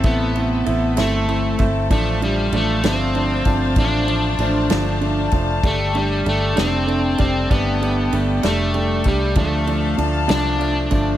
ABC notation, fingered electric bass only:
X:1
M:6/8
L:1/8
Q:3/8=64
K:Flyd
V:1 name="Fingered electric bass" clef=bass
A,,,2 A,,, G,,,2 G,,, | A,,,2 A,,, G,,,2 G,,, | A,,,2 A,,, G,,,2 F,,, | G,,,2 G,,, F,,,2 F,,, |
G,,,2 G,,, F,,,2 C,, | D,,2 D,, C,,2 G,,, |]